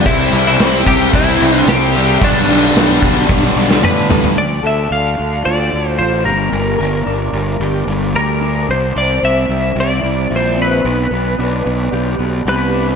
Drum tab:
CC |x-x-x-x-x-x-x-x-|x-x-x-x---------|----------------|----------------|
SD |----o-------o---|----o------o----|----------------|----------------|
T1 |----------------|--------oo------|----------------|----------------|
T2 |----------------|------------o---|----------------|----------------|
FT |----------------|--------------oo|----------------|----------------|
BD |o-----o-o-------|o-----o-o-------|----------------|----------------|

CC |----------------|----------------|
SD |----------------|----------------|
T1 |----------------|----------------|
T2 |----------------|----------------|
FT |----------------|----------------|
BD |----------------|----------------|